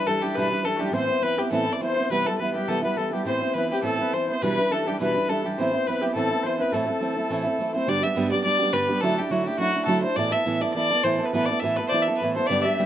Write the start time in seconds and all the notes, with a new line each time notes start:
0.06 E3 G3 D4 E4 A4
0.22 E3 G3 D4 E4 G4
0.35 E2 B2 E3 G3 D4 E4 B4
0.51 E3 G3 D4 E4 B4
0.63 E3 G3 D4 E4 A4
0.76 E4 F#4 G4
0.80 E3 G3 D4 G4
0.91 A2 E3 B3 C4 E4 C5
1.07 B3 C4 E4
1.21 E3 B3 C4 E4 B4
1.37 B3 C4 E4 G4
1.51 A2 E3 B3 C4 E4 A4
1.66 B3 C4 E4
1.73 D5
1.80 E3 B3 C4 E4 C5
1.97 B3 C4 E4
2.10 C3 E3 G3 B3 E4 B4
2.25 G3 B3 E4 A4
2.39 E3 G3 B3 E4 B4
2.54 G3 B3 E4 G4
2.67 C3 E3 G3 B3 E4 A4
2.82 G3 B3 E4 B4
2.94 E3 G3 A4 B4
2.99 B3 E4
3.11 G3 B3 E4 G4
3.25 A2 E3 B3 C4 E4 C5
3.42 B3 C4 E4
3.54 E3 B3 C4 E4 B4
3.70 B3 C4 E4 G4
3.82 A2 E3 B3 C4 E4 A4
3.99 B3 C4 E4 B4
4.13 E3 B3 C4 E4 C5
4.28 B3 C4 E4 C5
4.41 E2 B2 E3 G3 D4 E4 B4
4.58 E3 G3 D4 E4
4.70 E3 G3 D4 E4 A4
4.86 E3 G3 D4 E4 G4
4.99 E2 B2 E3 G3 D4 E4 B4
5.14 E3 G3 D4 E4
5.28 E3 G3 D4 E4 A4
5.44 E3 G3 D4 E4 G4
5.58 A2 E3 B3 C4 E4 C5
5.73 B3 C4 E4
5.86 E3 B3 C4 E4 B4
6.02 B3 C4 E4 G4
6.15 A2 E3 B3 C4 E4 A4
6.31 B3 C4 E4
6.43 E3 B3 C4 E4 C5
6.59 C4 E4 B4
6.63 B3
6.72 A2 E3 A3 C4 E4 A4
6.87 A3 C4 E4
7.00 E3 A3 C4 E4
7.16 A3 C4 E4
7.30 A2 E3 A3 C4 E4
7.44 A3 C4 E4
7.58 E3 A3 C4 E4
7.74 A3 C4 E4 C5
7.87 G2 D3 G3 B3 D4 G4 D5
8.02 G3 B3 D4 G4 E5
8.15 G2 D3 G3 B3 D4 G4
8.31 G3 B3 D4 G4 D5
8.44 G3 B3 D4 D5
8.48 G4
8.59 B3 D4 G4
8.63 G3
8.72 G2 D3 G3 B3 D4 G4 B4
8.88 G3 B3 D4 G4
9.01 D3 F#3 A3 D4 E4 A4
9.17 A3 D4 E4 G4
9.30 D3 F#3 A3 D4 E4 F#4
9.45 A3 D4 E4 G4
9.58 F#3 A3 D4 E4 F#4
9.73 A3 D4 E4
9.85 D3 F#3 A3 D4 E4 A4
10.02 A3 D4 E4 C5
10.16 A2 E3 B3 E4 A4 D5
10.31 B3 E4 A4 E5
10.45 A2 E3 B3 E4 A4
10.61 B3 E4 A4 D5
10.74 E3 B3 E4 D5
10.78 A4
10.90 B3 E4 A4
11.03 A2 E3 B3 E4 A4 C5
11.19 B3 E4 A4
11.25 B4
11.31 A2 E3 B3 E4 A4 B4
11.46 A4 D5
11.50 B3 E4
11.60 A2 E3 E5
11.64 B3 E4 A4
11.77 A4 B4
11.81 B3 E4
11.88 E3 C5 D5
11.93 B3 E4 A4
12.03 E5
12.07 B3 E4 A4
12.16 B4
12.21 A2 E3 B3 E4 A4
12.34 E4 A4 C5
12.39 B3
12.45 G2 D5 E5
12.50 D3 G3 B3 D4 G4 D5
12.62 G4 E5
12.66 G3 B3 D4 E5
12.77 G2 D3 G3 B3 D4 G4